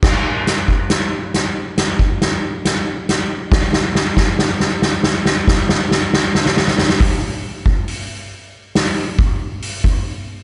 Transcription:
\new DrumStaff \with { instrumentName = "Drums" } \drummode { \time 4/4 \tempo 4 = 69 <cymc bd sn>8 <hh sn>16 bd16 <hh sn>8 <hh sn>8 <hh sn>16 bd16 <hh sn>8 <hh sn>8 <hh sn>8 | <bd sn>16 sn16 sn16 <bd sn>16 sn16 sn16 sn16 sn16 sn16 <bd sn>16 sn16 sn16 sn16 sn32 sn32 sn32 sn32 sn32 sn32 | <hho bd>8. bd16 hho4 <hho sn>8 bd8 hho16 bd8. | }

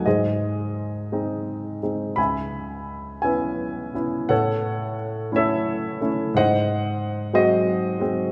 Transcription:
<<
  \new Staff \with { instrumentName = "Grand piano" } { \time 6/8 \key gis \phrygian \tempo 4. = 58 << { dis''2~ dis''8 r8 | b''4. gis''4 r8 | fis''4 r8 e''4 r8 | fis''4. dis''4. | } \\ { <gis' bis'>2~ <gis' bis'>8 r8 | <e'' gis''>4. <b' e''>4. | <a' cis''>4. <a' cis''>4. | <bis' dis''>4. <fis' bis'>4. | } >> }
  \new Staff \with { instrumentName = "Grand piano" } { \time 6/8 \key gis \phrygian gis,4. <gis bis dis'>4 <gis bis dis'>8 | cis,4. <b cis' e'>4 <b cis' e'>8 | a,4. <a cis' e'>4 <a cis' e'>8 | gis,4. <fis gis bis>4 <fis gis bis>8 | }
>>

